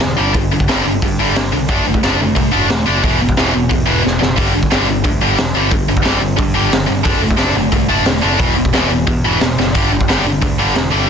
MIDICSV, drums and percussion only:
0, 0, Header, 1, 2, 480
1, 0, Start_track
1, 0, Key_signature, 1, "major"
1, 0, Tempo, 335946
1, 489, Time_signature, 4, 2, 24, 8
1, 15855, End_track
2, 0, Start_track
2, 0, Title_t, "Drums"
2, 11, Note_on_c, 9, 38, 106
2, 154, Note_off_c, 9, 38, 0
2, 484, Note_on_c, 9, 46, 54
2, 493, Note_on_c, 9, 36, 104
2, 627, Note_off_c, 9, 46, 0
2, 636, Note_off_c, 9, 36, 0
2, 859, Note_on_c, 9, 36, 85
2, 979, Note_on_c, 9, 46, 54
2, 990, Note_on_c, 9, 38, 101
2, 1001, Note_off_c, 9, 36, 0
2, 1121, Note_off_c, 9, 46, 0
2, 1133, Note_off_c, 9, 38, 0
2, 1461, Note_on_c, 9, 36, 101
2, 1463, Note_on_c, 9, 46, 56
2, 1604, Note_off_c, 9, 36, 0
2, 1606, Note_off_c, 9, 46, 0
2, 1938, Note_on_c, 9, 46, 58
2, 1949, Note_on_c, 9, 38, 109
2, 2081, Note_off_c, 9, 46, 0
2, 2092, Note_off_c, 9, 38, 0
2, 2403, Note_on_c, 9, 46, 52
2, 2413, Note_on_c, 9, 36, 101
2, 2546, Note_off_c, 9, 46, 0
2, 2555, Note_off_c, 9, 36, 0
2, 2775, Note_on_c, 9, 36, 84
2, 2900, Note_on_c, 9, 46, 50
2, 2911, Note_on_c, 9, 38, 101
2, 2918, Note_off_c, 9, 36, 0
2, 3042, Note_off_c, 9, 46, 0
2, 3054, Note_off_c, 9, 38, 0
2, 3376, Note_on_c, 9, 46, 52
2, 3377, Note_on_c, 9, 36, 104
2, 3519, Note_off_c, 9, 46, 0
2, 3520, Note_off_c, 9, 36, 0
2, 3851, Note_on_c, 9, 46, 50
2, 3862, Note_on_c, 9, 38, 106
2, 3994, Note_off_c, 9, 46, 0
2, 4005, Note_off_c, 9, 38, 0
2, 4339, Note_on_c, 9, 36, 99
2, 4344, Note_on_c, 9, 46, 51
2, 4482, Note_off_c, 9, 36, 0
2, 4487, Note_off_c, 9, 46, 0
2, 4697, Note_on_c, 9, 36, 80
2, 4808, Note_on_c, 9, 46, 48
2, 4820, Note_on_c, 9, 38, 105
2, 4839, Note_off_c, 9, 36, 0
2, 4951, Note_off_c, 9, 46, 0
2, 4963, Note_off_c, 9, 38, 0
2, 5300, Note_on_c, 9, 36, 101
2, 5307, Note_on_c, 9, 46, 50
2, 5443, Note_off_c, 9, 36, 0
2, 5450, Note_off_c, 9, 46, 0
2, 5807, Note_on_c, 9, 38, 60
2, 5950, Note_off_c, 9, 38, 0
2, 6031, Note_on_c, 9, 38, 87
2, 6174, Note_off_c, 9, 38, 0
2, 6255, Note_on_c, 9, 36, 103
2, 6255, Note_on_c, 9, 46, 58
2, 6397, Note_off_c, 9, 46, 0
2, 6398, Note_off_c, 9, 36, 0
2, 6611, Note_on_c, 9, 36, 75
2, 6729, Note_on_c, 9, 46, 52
2, 6740, Note_on_c, 9, 38, 100
2, 6754, Note_off_c, 9, 36, 0
2, 6872, Note_off_c, 9, 46, 0
2, 6883, Note_off_c, 9, 38, 0
2, 7203, Note_on_c, 9, 46, 53
2, 7211, Note_on_c, 9, 36, 100
2, 7346, Note_off_c, 9, 46, 0
2, 7354, Note_off_c, 9, 36, 0
2, 7684, Note_on_c, 9, 46, 52
2, 7695, Note_on_c, 9, 38, 98
2, 7826, Note_off_c, 9, 46, 0
2, 7838, Note_off_c, 9, 38, 0
2, 8159, Note_on_c, 9, 46, 52
2, 8165, Note_on_c, 9, 36, 105
2, 8302, Note_off_c, 9, 46, 0
2, 8308, Note_off_c, 9, 36, 0
2, 8526, Note_on_c, 9, 36, 79
2, 8641, Note_on_c, 9, 46, 49
2, 8652, Note_on_c, 9, 38, 98
2, 8669, Note_off_c, 9, 36, 0
2, 8784, Note_off_c, 9, 46, 0
2, 8795, Note_off_c, 9, 38, 0
2, 9122, Note_on_c, 9, 46, 53
2, 9124, Note_on_c, 9, 36, 96
2, 9264, Note_off_c, 9, 46, 0
2, 9267, Note_off_c, 9, 36, 0
2, 9605, Note_on_c, 9, 46, 55
2, 9617, Note_on_c, 9, 38, 111
2, 9748, Note_off_c, 9, 46, 0
2, 9759, Note_off_c, 9, 38, 0
2, 10071, Note_on_c, 9, 46, 55
2, 10078, Note_on_c, 9, 36, 109
2, 10213, Note_off_c, 9, 46, 0
2, 10221, Note_off_c, 9, 36, 0
2, 10438, Note_on_c, 9, 36, 84
2, 10543, Note_on_c, 9, 46, 53
2, 10555, Note_on_c, 9, 38, 101
2, 10581, Note_off_c, 9, 36, 0
2, 10686, Note_off_c, 9, 46, 0
2, 10698, Note_off_c, 9, 38, 0
2, 11029, Note_on_c, 9, 46, 51
2, 11034, Note_on_c, 9, 36, 99
2, 11172, Note_off_c, 9, 46, 0
2, 11177, Note_off_c, 9, 36, 0
2, 11507, Note_on_c, 9, 46, 57
2, 11518, Note_on_c, 9, 38, 109
2, 11650, Note_off_c, 9, 46, 0
2, 11661, Note_off_c, 9, 38, 0
2, 11988, Note_on_c, 9, 46, 52
2, 11996, Note_on_c, 9, 36, 110
2, 12131, Note_off_c, 9, 46, 0
2, 12139, Note_off_c, 9, 36, 0
2, 12360, Note_on_c, 9, 36, 79
2, 12472, Note_on_c, 9, 46, 50
2, 12483, Note_on_c, 9, 38, 97
2, 12503, Note_off_c, 9, 36, 0
2, 12615, Note_off_c, 9, 46, 0
2, 12626, Note_off_c, 9, 38, 0
2, 12959, Note_on_c, 9, 46, 51
2, 12964, Note_on_c, 9, 36, 103
2, 13102, Note_off_c, 9, 46, 0
2, 13106, Note_off_c, 9, 36, 0
2, 13438, Note_on_c, 9, 46, 54
2, 13450, Note_on_c, 9, 38, 109
2, 13581, Note_off_c, 9, 46, 0
2, 13593, Note_off_c, 9, 38, 0
2, 13710, Note_on_c, 9, 38, 62
2, 13853, Note_off_c, 9, 38, 0
2, 13929, Note_on_c, 9, 46, 53
2, 13929, Note_on_c, 9, 55, 77
2, 13934, Note_on_c, 9, 36, 104
2, 14072, Note_off_c, 9, 46, 0
2, 14072, Note_off_c, 9, 55, 0
2, 14077, Note_off_c, 9, 36, 0
2, 14296, Note_on_c, 9, 36, 83
2, 14419, Note_on_c, 9, 46, 54
2, 14430, Note_on_c, 9, 38, 99
2, 14439, Note_off_c, 9, 36, 0
2, 14561, Note_off_c, 9, 46, 0
2, 14573, Note_off_c, 9, 38, 0
2, 14892, Note_on_c, 9, 36, 102
2, 14894, Note_on_c, 9, 46, 57
2, 15034, Note_off_c, 9, 36, 0
2, 15037, Note_off_c, 9, 46, 0
2, 15365, Note_on_c, 9, 46, 57
2, 15376, Note_on_c, 9, 38, 106
2, 15507, Note_off_c, 9, 46, 0
2, 15519, Note_off_c, 9, 38, 0
2, 15855, End_track
0, 0, End_of_file